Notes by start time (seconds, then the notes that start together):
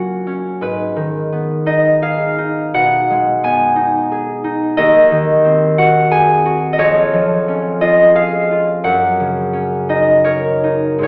Already playing: A#2 F#3 A#3 C#4 F#4 A#4 C#5 F#5
0.27 C#4
0.61 G#2 B4
0.96 D#3
1.32 B3
1.66 D#4 D#5
2.02 G#4 F5
2.38 D#4
2.74 B2 F#5
3.10 G#3
3.43 B3 G#5
3.76 D#4
4.12 G#4
4.44 D#4
4.77 D#2 D#5
5.11 D#3
5.45 C4
5.78 F#4 F#5
6.11 G#4 G#5
6.45 F#4
6.73 D#5
6.78 F2 C#5
7.13 F3
7.48 C#4
7.81 F4 D#5
8.15 G#4 F5
8.51 F4
8.84 F#2 F#5
9.20 C#3
9.53 C#4
9.89 D#4 D#5
10.24 A#4 C#5
10.64 D#4
10.98 G#2 G#3 D#4 G#4
11.03 C#5